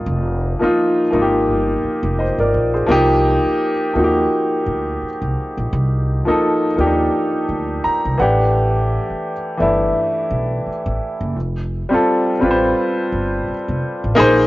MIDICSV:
0, 0, Header, 1, 4, 480
1, 0, Start_track
1, 0, Tempo, 705882
1, 41, Time_signature, 4, 2, 24, 8
1, 9839, End_track
2, 0, Start_track
2, 0, Title_t, "Grand piano"
2, 0, Program_c, 0, 0
2, 0, Control_c, 0, 64, 127
2, 0, Note_on_c, 0, 53, 72
2, 0, Note_on_c, 0, 58, 64
2, 0, Note_on_c, 0, 63, 63
2, 0, Note_on_c, 0, 65, 77
2, 404, Note_off_c, 0, 53, 0
2, 404, Note_on_c, 0, 53, 70
2, 413, Note_off_c, 0, 58, 0
2, 413, Note_on_c, 0, 58, 64
2, 422, Note_off_c, 0, 63, 0
2, 422, Note_on_c, 0, 63, 66
2, 434, Note_off_c, 0, 65, 0
2, 434, Note_on_c, 0, 65, 76
2, 683, Note_off_c, 0, 53, 0
2, 687, Note_off_c, 0, 58, 0
2, 692, Note_off_c, 0, 63, 0
2, 698, Note_off_c, 0, 65, 0
2, 751, Note_on_c, 0, 53, 66
2, 763, Note_on_c, 0, 58, 64
2, 774, Note_on_c, 0, 63, 62
2, 782, Note_on_c, 0, 65, 60
2, 822, Note_off_c, 0, 65, 0
2, 827, Note_on_c, 0, 67, 74
2, 1487, Note_on_c, 0, 75, 56
2, 1496, Note_on_c, 0, 72, 48
2, 1498, Note_off_c, 0, 53, 0
2, 1503, Note_off_c, 0, 58, 0
2, 1509, Note_off_c, 0, 63, 0
2, 1514, Note_off_c, 0, 67, 0
2, 1615, Note_off_c, 0, 75, 0
2, 1619, Note_off_c, 0, 72, 0
2, 1630, Note_on_c, 0, 74, 60
2, 1633, Note_on_c, 0, 70, 47
2, 1852, Note_off_c, 0, 74, 0
2, 1854, Note_off_c, 0, 70, 0
2, 1862, Note_on_c, 0, 72, 50
2, 1867, Note_on_c, 0, 68, 41
2, 1948, Note_on_c, 0, 53, 92
2, 1958, Note_on_c, 0, 58, 84
2, 1970, Control_c, 0, 64, 0
2, 1973, Note_on_c, 0, 63, 88
2, 1982, Note_on_c, 0, 67, 104
2, 2088, Note_off_c, 0, 72, 0
2, 2091, Note_off_c, 0, 68, 0
2, 2101, Control_c, 0, 64, 127
2, 2519, Note_off_c, 0, 53, 0
2, 2524, Note_off_c, 0, 58, 0
2, 2532, Note_off_c, 0, 63, 0
2, 2536, Note_off_c, 0, 67, 0
2, 2675, Note_on_c, 0, 53, 69
2, 2686, Note_on_c, 0, 58, 63
2, 2696, Note_on_c, 0, 63, 62
2, 2707, Note_on_c, 0, 66, 58
2, 2744, Note_off_c, 0, 66, 0
2, 2748, Note_on_c, 0, 67, 76
2, 3419, Note_off_c, 0, 53, 0
2, 3425, Note_off_c, 0, 58, 0
2, 3430, Note_off_c, 0, 63, 0
2, 3456, Note_off_c, 0, 67, 0
2, 4251, Note_on_c, 0, 53, 67
2, 4263, Note_on_c, 0, 58, 67
2, 4271, Note_on_c, 0, 63, 69
2, 4282, Note_on_c, 0, 69, 79
2, 4526, Note_off_c, 0, 53, 0
2, 4532, Note_off_c, 0, 58, 0
2, 4536, Note_off_c, 0, 63, 0
2, 4542, Note_off_c, 0, 69, 0
2, 4597, Note_on_c, 0, 53, 66
2, 4611, Note_on_c, 0, 58, 59
2, 4618, Note_on_c, 0, 62, 47
2, 4627, Note_on_c, 0, 67, 75
2, 4660, Note_off_c, 0, 62, 0
2, 4664, Note_on_c, 0, 63, 62
2, 5331, Note_on_c, 0, 82, 71
2, 5341, Note_off_c, 0, 53, 0
2, 5347, Note_off_c, 0, 58, 0
2, 5356, Note_off_c, 0, 67, 0
2, 5374, Note_off_c, 0, 63, 0
2, 5550, Note_off_c, 0, 82, 0
2, 5560, Note_on_c, 0, 52, 76
2, 5570, Control_c, 0, 64, 0
2, 5571, Note_on_c, 0, 57, 65
2, 5574, Note_on_c, 0, 78, 63
2, 5581, Note_on_c, 0, 62, 66
2, 5587, Note_on_c, 0, 67, 80
2, 5700, Control_c, 0, 64, 127
2, 5791, Note_off_c, 0, 78, 0
2, 6335, Note_off_c, 0, 52, 0
2, 6341, Note_off_c, 0, 57, 0
2, 6346, Note_off_c, 0, 62, 0
2, 6349, Note_off_c, 0, 67, 0
2, 6511, Note_on_c, 0, 52, 70
2, 6520, Note_on_c, 0, 57, 59
2, 6530, Note_on_c, 0, 62, 59
2, 6542, Note_on_c, 0, 64, 79
2, 7257, Note_off_c, 0, 52, 0
2, 7262, Note_off_c, 0, 57, 0
2, 7267, Note_off_c, 0, 62, 0
2, 7273, Note_off_c, 0, 64, 0
2, 7729, Control_c, 0, 64, 0
2, 7848, Control_c, 0, 64, 127
2, 8085, Note_on_c, 0, 55, 71
2, 8096, Note_on_c, 0, 60, 63
2, 8109, Note_on_c, 0, 65, 68
2, 8119, Note_on_c, 0, 69, 81
2, 8364, Note_off_c, 0, 55, 0
2, 8369, Note_off_c, 0, 60, 0
2, 8376, Note_off_c, 0, 65, 0
2, 8381, Note_off_c, 0, 69, 0
2, 8429, Note_on_c, 0, 55, 69
2, 8440, Note_on_c, 0, 60, 64
2, 8451, Note_on_c, 0, 65, 69
2, 8461, Note_on_c, 0, 71, 64
2, 8501, Note_off_c, 0, 71, 0
2, 8505, Note_on_c, 0, 72, 83
2, 9177, Note_off_c, 0, 55, 0
2, 9182, Note_off_c, 0, 60, 0
2, 9188, Note_off_c, 0, 65, 0
2, 9214, Note_off_c, 0, 72, 0
2, 9622, Note_on_c, 0, 58, 106
2, 9631, Note_on_c, 0, 63, 105
2, 9641, Note_on_c, 0, 68, 99
2, 9651, Control_c, 0, 64, 0
2, 9652, Note_on_c, 0, 72, 119
2, 9750, Control_c, 0, 64, 127
2, 9839, Note_off_c, 0, 58, 0
2, 9839, Note_off_c, 0, 63, 0
2, 9839, Note_off_c, 0, 68, 0
2, 9839, Note_off_c, 0, 72, 0
2, 9839, End_track
3, 0, Start_track
3, 0, Title_t, "Upright bass"
3, 0, Program_c, 1, 32
3, 42, Note_on_c, 1, 29, 86
3, 362, Note_off_c, 1, 29, 0
3, 768, Note_on_c, 1, 32, 77
3, 1006, Note_off_c, 1, 32, 0
3, 1006, Note_on_c, 1, 31, 88
3, 1208, Note_off_c, 1, 31, 0
3, 1380, Note_on_c, 1, 29, 78
3, 1583, Note_off_c, 1, 29, 0
3, 1621, Note_on_c, 1, 32, 73
3, 1707, Note_off_c, 1, 32, 0
3, 1728, Note_on_c, 1, 34, 75
3, 1929, Note_off_c, 1, 34, 0
3, 1964, Note_on_c, 1, 36, 84
3, 2283, Note_off_c, 1, 36, 0
3, 2690, Note_on_c, 1, 39, 72
3, 2890, Note_off_c, 1, 39, 0
3, 3171, Note_on_c, 1, 38, 71
3, 3371, Note_off_c, 1, 38, 0
3, 3548, Note_on_c, 1, 36, 70
3, 3631, Note_off_c, 1, 36, 0
3, 3791, Note_on_c, 1, 34, 75
3, 3873, Note_off_c, 1, 34, 0
3, 3895, Note_on_c, 1, 36, 91
3, 4209, Note_off_c, 1, 36, 0
3, 4613, Note_on_c, 1, 39, 82
3, 4812, Note_off_c, 1, 39, 0
3, 5091, Note_on_c, 1, 38, 71
3, 5291, Note_off_c, 1, 38, 0
3, 5476, Note_on_c, 1, 36, 72
3, 5556, Note_off_c, 1, 36, 0
3, 5573, Note_on_c, 1, 33, 87
3, 6092, Note_off_c, 1, 33, 0
3, 6530, Note_on_c, 1, 31, 75
3, 6730, Note_off_c, 1, 31, 0
3, 7008, Note_on_c, 1, 35, 76
3, 7209, Note_off_c, 1, 35, 0
3, 7384, Note_on_c, 1, 33, 78
3, 7469, Note_off_c, 1, 33, 0
3, 7621, Note_on_c, 1, 30, 78
3, 7720, Note_off_c, 1, 30, 0
3, 7720, Note_on_c, 1, 29, 81
3, 8041, Note_off_c, 1, 29, 0
3, 8444, Note_on_c, 1, 33, 67
3, 8647, Note_off_c, 1, 33, 0
3, 8924, Note_on_c, 1, 31, 68
3, 9126, Note_off_c, 1, 31, 0
3, 9305, Note_on_c, 1, 29, 73
3, 9389, Note_off_c, 1, 29, 0
3, 9547, Note_on_c, 1, 33, 75
3, 9631, Note_off_c, 1, 33, 0
3, 9648, Note_on_c, 1, 34, 102
3, 9839, Note_off_c, 1, 34, 0
3, 9839, End_track
4, 0, Start_track
4, 0, Title_t, "Muted upright bass strokes"
4, 424, Note_on_c, 9, 29, 40
4, 492, Note_off_c, 9, 29, 0
4, 1248, Note_on_c, 9, 29, 39
4, 1316, Note_off_c, 9, 29, 0
4, 2344, Note_on_c, 9, 29, 43
4, 2412, Note_off_c, 9, 29, 0
4, 3412, Note_on_c, 9, 29, 41
4, 3480, Note_off_c, 9, 29, 0
4, 4276, Note_on_c, 9, 29, 42
4, 4344, Note_off_c, 9, 29, 0
4, 5337, Note_on_c, 9, 29, 46
4, 5405, Note_off_c, 9, 29, 0
4, 6189, Note_on_c, 9, 29, 44
4, 6257, Note_off_c, 9, 29, 0
4, 7251, Note_on_c, 9, 29, 40
4, 7319, Note_off_c, 9, 29, 0
4, 8103, Note_on_c, 9, 29, 40
4, 8171, Note_off_c, 9, 29, 0
4, 9167, Note_on_c, 9, 29, 42
4, 9235, Note_off_c, 9, 29, 0
4, 9839, End_track
0, 0, End_of_file